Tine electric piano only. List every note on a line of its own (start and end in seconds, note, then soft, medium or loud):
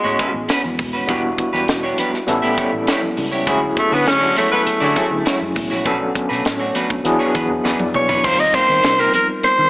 0.00 1.04 G#3 medium
0.00 1.05 B3 medium
0.00 1.05 C#4 medium
0.00 1.05 E4 medium
0.00 1.05 F#4 medium
1.07 2.25 G3 medium
1.07 2.25 B3 medium
1.07 2.26 D4 medium
1.07 2.26 E4 medium
1.07 2.26 F#4 medium
2.26 3.44 G3 medium
2.26 3.44 B3 medium
2.26 3.45 C#4 medium
2.26 3.45 E4 medium
2.26 3.45 A4 medium
3.46 4.93 F#3 medium
3.46 4.93 A3 medium
3.46 4.93 C#4 medium
3.46 4.94 E4 medium
3.46 4.94 G#4 medium
4.96 5.84 F#3 medium
4.96 5.86 A3 soft
4.96 5.85 C#4 soft
4.96 5.86 E4 soft
4.96 5.86 G#4 medium
5.85 7.02 F#3 medium
5.85 7.02 B3 medium
5.85 7.03 C#4 medium
5.85 7.03 D4 medium
5.85 7.03 A4 medium
7.04 8.21 F#3 medium
7.04 8.22 B3 medium
7.04 8.22 D4 medium
7.04 8.22 E4 medium
7.04 8.22 G#4 medium
7.65 8.20 D5 medium
8.23 9.70 G3 medium
8.23 9.70 C4 medium
8.23 9.70 D#4 medium
8.23 9.70 F4 medium
8.23 9.70 A#4 medium